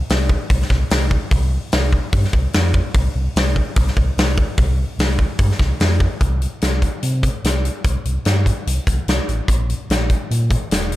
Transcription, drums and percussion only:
0.09 snare loud
0.09 open hi-hat soft
0.29 kick medium
0.50 kick loud
0.50 open hi-hat medium
0.62 snare soft
0.70 kick medium
0.70 snare soft
0.90 snare loud
0.90 open hi-hat medium
1.11 kick medium
1.31 kick loud
1.31 open hi-hat medium
1.72 snare loud
1.72 open hi-hat medium
1.93 kick medium
2.13 kick loud
2.13 open hi-hat medium
2.24 snare soft
2.33 kick medium
2.53 snare loud
2.53 open hi-hat medium
2.74 kick medium
2.94 kick loud
2.94 open hi-hat medium
3.36 snare loud
3.36 open hi-hat medium
3.56 kick medium
3.76 kick loud
3.76 open hi-hat medium
3.88 snare soft
3.97 kick medium
4.18 snare loud
4.18 open hi-hat medium
4.38 kick medium
4.58 kick loud
4.58 open hi-hat medium
4.99 snare loud
4.99 open hi-hat medium
5.19 kick medium
5.38 kick loud
5.38 open hi-hat medium
5.51 snare soft
5.59 kick medium
5.59 snare soft
5.80 snare loud
5.80 open hi-hat medium
6.00 kick medium
6.21 kick medium
6.21 closed hi-hat medium
6.42 closed hi-hat soft
6.61 snare medium
6.61 closed hi-hat medium
6.82 kick medium
6.82 closed hi-hat soft
7.03 closed hi-hat medium
7.23 kick medium
7.23 closed hi-hat medium
7.44 snare medium
7.44 closed hi-hat medium
7.65 closed hi-hat medium
7.85 kick loud
7.85 closed hi-hat medium
8.05 closed hi-hat medium
8.25 snare medium
8.25 closed hi-hat medium
8.46 kick medium
8.46 closed hi-hat medium
8.67 closed hi-hat medium
8.87 kick medium
8.87 closed hi-hat medium
9.08 snare loud
9.08 closed hi-hat medium
9.29 closed hi-hat soft
9.48 kick medium
9.48 closed hi-hat medium
9.70 closed hi-hat medium
9.90 snare medium
9.90 closed hi-hat medium
10.10 kick medium
10.10 closed hi-hat soft
10.31 closed hi-hat medium
10.51 kick medium
10.51 closed hi-hat medium
10.71 snare loud
10.71 closed hi-hat medium
10.92 closed hi-hat medium

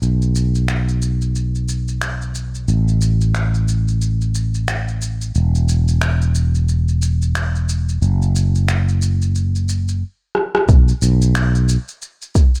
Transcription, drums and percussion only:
0.03 shaker soft
0.22 shaker soft
0.35 shaker medium
0.55 shaker soft
0.68 finger snap medium
0.68 shaker soft
0.89 shaker soft
1.02 shaker medium
1.22 shaker soft
1.36 shaker soft
1.55 shaker soft
1.69 shaker medium
1.88 shaker soft
2.02 finger snap medium
2.02 shaker soft
2.22 shaker soft
2.35 shaker medium
2.55 shaker soft
2.68 shaker soft
2.88 shaker soft
3.01 shaker medium
3.21 shaker soft
3.35 finger snap medium
3.35 shaker soft
3.55 shaker soft
3.68 shaker medium
3.88 shaker soft
4.02 shaker soft
4.22 shaker soft
4.35 shaker medium
4.55 shaker soft
4.68 finger snap medium
4.68 shaker soft
4.88 shaker soft
5.02 shaker medium
5.22 shaker soft
5.35 shaker soft
5.55 shaker soft
5.69 shaker medium
5.88 shaker soft
6.01 finger snap medium
6.01 shaker soft
6.22 shaker soft
6.35 shaker medium
6.55 shaker soft
6.69 shaker soft
6.88 shaker soft
7.02 shaker medium
7.22 shaker soft
7.35 finger snap medium
7.35 shaker soft
7.56 shaker soft
7.69 shaker medium
7.89 shaker soft
8.02 shaker soft
8.22 shaker soft
8.36 shaker medium
8.55 shaker soft
8.68 finger snap medium
8.68 shaker soft
8.89 shaker soft
9.02 shaker medium
9.22 shaker soft
9.36 shaker soft
9.56 shaker soft
9.69 shaker medium
9.89 shaker soft
10.35 cross-stick medium
10.55 cross-stick medium
10.69 kick loud
10.69 shaker soft
10.89 shaker soft
11.02 shaker medium
11.22 shaker soft
11.35 finger snap loud
11.35 shaker soft
11.55 shaker soft
11.69 shaker medium
11.89 shaker soft
12.02 shaker soft
12.22 shaker soft
12.35 kick loud
12.35 shaker medium
12.55 shaker soft

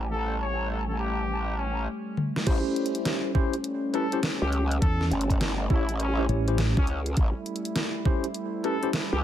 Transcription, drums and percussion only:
2.17 high tom medium
2.36 snare medium
2.47 kick loud
2.47 closed hi-hat medium
2.47 crash loud
2.76 closed hi-hat soft
2.86 closed hi-hat medium
2.95 closed hi-hat medium
3.05 snare loud
3.05 closed hi-hat medium
3.35 kick loud
3.53 closed hi-hat medium
3.64 closed hi-hat medium
3.94 cross-stick medium
3.94 closed hi-hat soft
4.12 closed hi-hat medium
4.23 snare loud
4.23 closed hi-hat medium
4.53 closed hi-hat soft
4.71 closed hi-hat medium
4.82 kick loud
4.82 closed hi-hat medium
5.01 snare soft
5.11 closed hi-hat soft
5.21 closed hi-hat medium
5.30 kick medium
5.30 closed hi-hat medium
5.41 snare loud
5.41 closed hi-hat medium
5.70 kick loud
5.89 closed hi-hat medium
6.00 cross-stick medium
6.00 closed hi-hat medium
6.29 closed hi-hat soft
6.48 closed hi-hat medium
6.58 snare loud
6.58 closed hi-hat medium
6.77 kick loud
6.77 cross-stick soft
6.87 closed hi-hat soft
7.06 closed hi-hat medium
7.17 kick loud
7.17 closed hi-hat medium
7.46 closed hi-hat medium
7.56 closed hi-hat medium
7.65 closed hi-hat medium
7.76 snare loud
7.76 closed hi-hat medium
8.05 kick loud
8.24 closed hi-hat medium
8.34 closed hi-hat medium
8.64 cross-stick soft
8.64 closed hi-hat soft
8.83 closed hi-hat medium
8.93 snare loud
8.93 closed hi-hat medium

